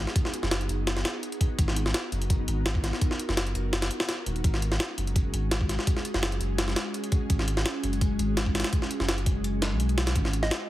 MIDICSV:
0, 0, Header, 1, 5, 480
1, 0, Start_track
1, 0, Key_signature, 5, "minor"
1, 0, Tempo, 357143
1, 210, Time_signature, 4, 2, 24, 8
1, 14373, End_track
2, 0, Start_track
2, 0, Title_t, "Synth pluck"
2, 0, Program_c, 0, 84
2, 14013, Note_on_c, 0, 75, 95
2, 14300, Note_off_c, 0, 75, 0
2, 14373, End_track
3, 0, Start_track
3, 0, Title_t, "Ambient pad"
3, 0, Program_c, 1, 92
3, 0, Note_on_c, 1, 59, 83
3, 0, Note_on_c, 1, 63, 76
3, 0, Note_on_c, 1, 66, 79
3, 0, Note_on_c, 1, 68, 95
3, 2092, Note_off_c, 1, 68, 0
3, 2124, Note_on_c, 1, 70, 91
3, 5916, Note_off_c, 1, 63, 0
3, 5917, Note_off_c, 1, 59, 0
3, 5929, Note_off_c, 1, 70, 0
3, 5969, Note_on_c, 1, 61, 80
3, 5969, Note_on_c, 1, 68, 94
3, 5970, Note_on_c, 1, 56, 84
3, 13595, Note_off_c, 1, 68, 0
3, 13596, Note_off_c, 1, 56, 0
3, 13596, Note_off_c, 1, 61, 0
3, 13596, Note_off_c, 1, 66, 0
3, 13650, Note_on_c, 1, 68, 90
3, 13651, Note_on_c, 1, 63, 77
3, 13652, Note_on_c, 1, 59, 87
3, 13653, Note_on_c, 1, 66, 75
3, 14373, Note_off_c, 1, 59, 0
3, 14373, Note_off_c, 1, 63, 0
3, 14373, Note_off_c, 1, 66, 0
3, 14373, Note_off_c, 1, 68, 0
3, 14373, End_track
4, 0, Start_track
4, 0, Title_t, "Sub bass"
4, 0, Program_c, 2, 38
4, 574, Note_on_c, 2, 30, 96
4, 911, Note_off_c, 2, 30, 0
4, 927, Note_on_c, 2, 30, 99
4, 1390, Note_off_c, 2, 30, 0
4, 2131, Note_on_c, 2, 32, 94
4, 2592, Note_off_c, 2, 32, 0
4, 2849, Note_on_c, 2, 30, 96
4, 3311, Note_off_c, 2, 30, 0
4, 3330, Note_on_c, 2, 32, 87
4, 3916, Note_off_c, 2, 32, 0
4, 4417, Note_on_c, 2, 30, 96
4, 4752, Note_off_c, 2, 30, 0
4, 4771, Note_on_c, 2, 30, 93
4, 5232, Note_off_c, 2, 30, 0
4, 5729, Note_on_c, 2, 27, 105
4, 5947, Note_off_c, 2, 27, 0
4, 5970, Note_on_c, 2, 32, 102
4, 6431, Note_off_c, 2, 32, 0
4, 6689, Note_on_c, 2, 30, 96
4, 7151, Note_off_c, 2, 30, 0
4, 7168, Note_on_c, 2, 32, 87
4, 7755, Note_off_c, 2, 32, 0
4, 8256, Note_on_c, 2, 30, 99
4, 8592, Note_off_c, 2, 30, 0
4, 8609, Note_on_c, 2, 30, 97
4, 9071, Note_off_c, 2, 30, 0
4, 9808, Note_on_c, 2, 32, 96
4, 10271, Note_off_c, 2, 32, 0
4, 10528, Note_on_c, 2, 30, 98
4, 10991, Note_off_c, 2, 30, 0
4, 11010, Note_on_c, 2, 32, 88
4, 11596, Note_off_c, 2, 32, 0
4, 12094, Note_on_c, 2, 30, 98
4, 12430, Note_off_c, 2, 30, 0
4, 12450, Note_on_c, 2, 30, 96
4, 13055, Note_on_c, 2, 35, 89
4, 13075, Note_off_c, 2, 30, 0
4, 13631, Note_off_c, 2, 35, 0
4, 13650, Note_on_c, 2, 32, 98
4, 14112, Note_off_c, 2, 32, 0
4, 14373, End_track
5, 0, Start_track
5, 0, Title_t, "Drums"
5, 98, Note_on_c, 9, 38, 38
5, 210, Note_on_c, 9, 36, 116
5, 211, Note_on_c, 9, 42, 90
5, 233, Note_off_c, 9, 38, 0
5, 337, Note_on_c, 9, 38, 38
5, 345, Note_off_c, 9, 36, 0
5, 346, Note_off_c, 9, 42, 0
5, 451, Note_on_c, 9, 42, 72
5, 472, Note_off_c, 9, 38, 0
5, 578, Note_on_c, 9, 38, 52
5, 586, Note_off_c, 9, 42, 0
5, 690, Note_off_c, 9, 38, 0
5, 690, Note_on_c, 9, 38, 118
5, 690, Note_on_c, 9, 42, 93
5, 818, Note_off_c, 9, 42, 0
5, 818, Note_on_c, 9, 42, 45
5, 825, Note_off_c, 9, 38, 0
5, 931, Note_off_c, 9, 42, 0
5, 931, Note_on_c, 9, 42, 66
5, 1065, Note_off_c, 9, 42, 0
5, 1171, Note_on_c, 9, 38, 102
5, 1171, Note_on_c, 9, 42, 80
5, 1298, Note_off_c, 9, 38, 0
5, 1298, Note_on_c, 9, 38, 56
5, 1306, Note_off_c, 9, 42, 0
5, 1411, Note_off_c, 9, 38, 0
5, 1411, Note_on_c, 9, 38, 104
5, 1411, Note_on_c, 9, 42, 78
5, 1546, Note_off_c, 9, 38, 0
5, 1546, Note_off_c, 9, 42, 0
5, 1653, Note_on_c, 9, 42, 61
5, 1778, Note_off_c, 9, 42, 0
5, 1778, Note_on_c, 9, 42, 42
5, 1891, Note_on_c, 9, 36, 97
5, 1893, Note_off_c, 9, 42, 0
5, 1893, Note_on_c, 9, 42, 72
5, 2026, Note_off_c, 9, 36, 0
5, 2027, Note_off_c, 9, 42, 0
5, 2131, Note_on_c, 9, 36, 113
5, 2132, Note_on_c, 9, 42, 91
5, 2258, Note_on_c, 9, 38, 40
5, 2266, Note_off_c, 9, 36, 0
5, 2266, Note_off_c, 9, 42, 0
5, 2371, Note_on_c, 9, 42, 71
5, 2392, Note_off_c, 9, 38, 0
5, 2497, Note_on_c, 9, 38, 58
5, 2505, Note_off_c, 9, 42, 0
5, 2612, Note_off_c, 9, 38, 0
5, 2612, Note_on_c, 9, 38, 120
5, 2612, Note_on_c, 9, 42, 91
5, 2746, Note_off_c, 9, 38, 0
5, 2746, Note_off_c, 9, 42, 0
5, 2852, Note_on_c, 9, 42, 66
5, 2978, Note_off_c, 9, 42, 0
5, 2978, Note_on_c, 9, 42, 46
5, 3091, Note_on_c, 9, 36, 105
5, 3092, Note_off_c, 9, 42, 0
5, 3092, Note_on_c, 9, 42, 83
5, 3225, Note_off_c, 9, 36, 0
5, 3227, Note_off_c, 9, 42, 0
5, 3332, Note_on_c, 9, 42, 69
5, 3467, Note_off_c, 9, 42, 0
5, 3571, Note_on_c, 9, 38, 118
5, 3571, Note_on_c, 9, 42, 87
5, 3697, Note_on_c, 9, 36, 102
5, 3705, Note_off_c, 9, 38, 0
5, 3705, Note_off_c, 9, 42, 0
5, 3813, Note_on_c, 9, 38, 47
5, 3813, Note_on_c, 9, 42, 68
5, 3832, Note_off_c, 9, 36, 0
5, 3940, Note_off_c, 9, 38, 0
5, 3940, Note_on_c, 9, 38, 37
5, 3947, Note_off_c, 9, 42, 0
5, 4051, Note_on_c, 9, 36, 116
5, 4053, Note_on_c, 9, 42, 89
5, 4075, Note_off_c, 9, 38, 0
5, 4180, Note_on_c, 9, 38, 39
5, 4186, Note_off_c, 9, 36, 0
5, 4187, Note_off_c, 9, 42, 0
5, 4293, Note_on_c, 9, 42, 68
5, 4314, Note_off_c, 9, 38, 0
5, 4419, Note_on_c, 9, 38, 53
5, 4428, Note_off_c, 9, 42, 0
5, 4532, Note_off_c, 9, 38, 0
5, 4532, Note_on_c, 9, 38, 117
5, 4532, Note_on_c, 9, 42, 91
5, 4658, Note_off_c, 9, 42, 0
5, 4658, Note_on_c, 9, 42, 45
5, 4667, Note_off_c, 9, 38, 0
5, 4772, Note_off_c, 9, 42, 0
5, 4772, Note_on_c, 9, 42, 69
5, 4907, Note_off_c, 9, 42, 0
5, 5011, Note_on_c, 9, 38, 101
5, 5011, Note_on_c, 9, 42, 78
5, 5137, Note_off_c, 9, 38, 0
5, 5137, Note_off_c, 9, 42, 0
5, 5137, Note_on_c, 9, 38, 108
5, 5137, Note_on_c, 9, 42, 82
5, 5251, Note_off_c, 9, 42, 0
5, 5251, Note_on_c, 9, 42, 70
5, 5271, Note_off_c, 9, 38, 0
5, 5376, Note_on_c, 9, 38, 115
5, 5386, Note_off_c, 9, 42, 0
5, 5491, Note_off_c, 9, 38, 0
5, 5491, Note_on_c, 9, 38, 102
5, 5491, Note_on_c, 9, 42, 80
5, 5626, Note_off_c, 9, 38, 0
5, 5626, Note_off_c, 9, 42, 0
5, 5731, Note_on_c, 9, 42, 65
5, 5857, Note_off_c, 9, 42, 0
5, 5857, Note_on_c, 9, 42, 41
5, 5971, Note_off_c, 9, 42, 0
5, 5971, Note_on_c, 9, 36, 113
5, 5971, Note_on_c, 9, 42, 89
5, 6099, Note_on_c, 9, 38, 40
5, 6105, Note_off_c, 9, 36, 0
5, 6106, Note_off_c, 9, 42, 0
5, 6213, Note_on_c, 9, 42, 71
5, 6233, Note_off_c, 9, 38, 0
5, 6338, Note_on_c, 9, 38, 58
5, 6347, Note_off_c, 9, 42, 0
5, 6451, Note_off_c, 9, 38, 0
5, 6451, Note_on_c, 9, 38, 118
5, 6451, Note_on_c, 9, 42, 89
5, 6585, Note_off_c, 9, 38, 0
5, 6585, Note_off_c, 9, 42, 0
5, 6692, Note_on_c, 9, 42, 69
5, 6819, Note_off_c, 9, 42, 0
5, 6819, Note_on_c, 9, 42, 46
5, 6931, Note_on_c, 9, 36, 110
5, 6933, Note_off_c, 9, 42, 0
5, 6933, Note_on_c, 9, 42, 88
5, 7066, Note_off_c, 9, 36, 0
5, 7067, Note_off_c, 9, 42, 0
5, 7172, Note_on_c, 9, 42, 69
5, 7306, Note_off_c, 9, 42, 0
5, 7411, Note_on_c, 9, 38, 115
5, 7411, Note_on_c, 9, 42, 88
5, 7537, Note_on_c, 9, 36, 100
5, 7545, Note_off_c, 9, 38, 0
5, 7545, Note_off_c, 9, 42, 0
5, 7652, Note_on_c, 9, 38, 48
5, 7652, Note_on_c, 9, 42, 72
5, 7671, Note_off_c, 9, 36, 0
5, 7779, Note_off_c, 9, 38, 0
5, 7779, Note_on_c, 9, 38, 39
5, 7786, Note_off_c, 9, 42, 0
5, 7891, Note_on_c, 9, 36, 115
5, 7892, Note_on_c, 9, 42, 91
5, 7913, Note_off_c, 9, 38, 0
5, 8017, Note_on_c, 9, 38, 38
5, 8025, Note_off_c, 9, 36, 0
5, 8026, Note_off_c, 9, 42, 0
5, 8131, Note_on_c, 9, 42, 70
5, 8152, Note_off_c, 9, 38, 0
5, 8256, Note_on_c, 9, 38, 53
5, 8265, Note_off_c, 9, 42, 0
5, 8370, Note_off_c, 9, 38, 0
5, 8370, Note_on_c, 9, 38, 121
5, 8370, Note_on_c, 9, 42, 90
5, 8496, Note_off_c, 9, 42, 0
5, 8496, Note_on_c, 9, 42, 45
5, 8505, Note_off_c, 9, 38, 0
5, 8610, Note_off_c, 9, 42, 0
5, 8610, Note_on_c, 9, 42, 69
5, 8744, Note_off_c, 9, 42, 0
5, 8850, Note_on_c, 9, 38, 104
5, 8850, Note_on_c, 9, 42, 79
5, 8975, Note_off_c, 9, 38, 0
5, 8975, Note_on_c, 9, 38, 59
5, 8984, Note_off_c, 9, 42, 0
5, 9089, Note_off_c, 9, 38, 0
5, 9089, Note_on_c, 9, 38, 106
5, 9089, Note_on_c, 9, 42, 78
5, 9224, Note_off_c, 9, 38, 0
5, 9224, Note_off_c, 9, 42, 0
5, 9331, Note_on_c, 9, 42, 62
5, 9457, Note_off_c, 9, 42, 0
5, 9457, Note_on_c, 9, 42, 43
5, 9568, Note_off_c, 9, 42, 0
5, 9568, Note_on_c, 9, 42, 71
5, 9570, Note_on_c, 9, 36, 103
5, 9702, Note_off_c, 9, 42, 0
5, 9704, Note_off_c, 9, 36, 0
5, 9809, Note_on_c, 9, 36, 112
5, 9809, Note_on_c, 9, 42, 92
5, 9936, Note_on_c, 9, 38, 40
5, 9943, Note_off_c, 9, 42, 0
5, 9944, Note_off_c, 9, 36, 0
5, 10049, Note_on_c, 9, 42, 68
5, 10070, Note_off_c, 9, 38, 0
5, 10175, Note_on_c, 9, 38, 60
5, 10184, Note_off_c, 9, 42, 0
5, 10290, Note_off_c, 9, 38, 0
5, 10290, Note_on_c, 9, 38, 116
5, 10290, Note_on_c, 9, 42, 92
5, 10424, Note_off_c, 9, 38, 0
5, 10424, Note_off_c, 9, 42, 0
5, 10530, Note_on_c, 9, 42, 67
5, 10657, Note_off_c, 9, 42, 0
5, 10657, Note_on_c, 9, 42, 46
5, 10770, Note_off_c, 9, 42, 0
5, 10770, Note_on_c, 9, 36, 106
5, 10770, Note_on_c, 9, 42, 87
5, 10904, Note_off_c, 9, 36, 0
5, 10905, Note_off_c, 9, 42, 0
5, 11011, Note_on_c, 9, 42, 71
5, 11145, Note_off_c, 9, 42, 0
5, 11250, Note_on_c, 9, 38, 122
5, 11250, Note_on_c, 9, 42, 92
5, 11376, Note_on_c, 9, 36, 100
5, 11384, Note_off_c, 9, 38, 0
5, 11384, Note_off_c, 9, 42, 0
5, 11491, Note_on_c, 9, 38, 90
5, 11491, Note_on_c, 9, 42, 72
5, 11511, Note_off_c, 9, 36, 0
5, 11555, Note_off_c, 9, 38, 0
5, 11555, Note_off_c, 9, 42, 0
5, 11555, Note_on_c, 9, 38, 88
5, 11555, Note_on_c, 9, 42, 70
5, 11617, Note_off_c, 9, 38, 0
5, 11617, Note_off_c, 9, 42, 0
5, 11617, Note_on_c, 9, 38, 107
5, 11617, Note_on_c, 9, 42, 83
5, 11729, Note_off_c, 9, 42, 0
5, 11729, Note_on_c, 9, 36, 117
5, 11729, Note_on_c, 9, 42, 94
5, 11751, Note_off_c, 9, 38, 0
5, 11856, Note_on_c, 9, 38, 37
5, 11863, Note_off_c, 9, 42, 0
5, 11864, Note_off_c, 9, 36, 0
5, 11970, Note_on_c, 9, 42, 71
5, 11990, Note_off_c, 9, 38, 0
5, 12096, Note_on_c, 9, 38, 53
5, 12105, Note_off_c, 9, 42, 0
5, 12211, Note_off_c, 9, 38, 0
5, 12211, Note_on_c, 9, 38, 114
5, 12211, Note_on_c, 9, 42, 89
5, 12337, Note_off_c, 9, 42, 0
5, 12337, Note_on_c, 9, 42, 43
5, 12345, Note_off_c, 9, 38, 0
5, 12450, Note_off_c, 9, 42, 0
5, 12450, Note_on_c, 9, 36, 101
5, 12450, Note_on_c, 9, 42, 80
5, 12584, Note_off_c, 9, 36, 0
5, 12584, Note_off_c, 9, 42, 0
5, 12691, Note_on_c, 9, 42, 61
5, 12826, Note_off_c, 9, 42, 0
5, 12930, Note_on_c, 9, 38, 107
5, 12930, Note_on_c, 9, 42, 79
5, 13065, Note_off_c, 9, 38, 0
5, 13065, Note_off_c, 9, 42, 0
5, 13169, Note_on_c, 9, 42, 62
5, 13296, Note_off_c, 9, 42, 0
5, 13296, Note_on_c, 9, 42, 40
5, 13409, Note_off_c, 9, 42, 0
5, 13409, Note_on_c, 9, 38, 108
5, 13409, Note_on_c, 9, 42, 83
5, 13534, Note_off_c, 9, 38, 0
5, 13534, Note_off_c, 9, 42, 0
5, 13534, Note_on_c, 9, 38, 107
5, 13534, Note_on_c, 9, 42, 83
5, 13649, Note_off_c, 9, 42, 0
5, 13649, Note_on_c, 9, 36, 113
5, 13649, Note_on_c, 9, 42, 91
5, 13668, Note_off_c, 9, 38, 0
5, 13776, Note_on_c, 9, 38, 41
5, 13783, Note_off_c, 9, 42, 0
5, 13784, Note_off_c, 9, 36, 0
5, 13889, Note_on_c, 9, 42, 72
5, 13911, Note_off_c, 9, 38, 0
5, 14015, Note_on_c, 9, 38, 56
5, 14024, Note_off_c, 9, 42, 0
5, 14129, Note_off_c, 9, 38, 0
5, 14129, Note_on_c, 9, 38, 117
5, 14129, Note_on_c, 9, 42, 90
5, 14263, Note_off_c, 9, 38, 0
5, 14263, Note_off_c, 9, 42, 0
5, 14373, End_track
0, 0, End_of_file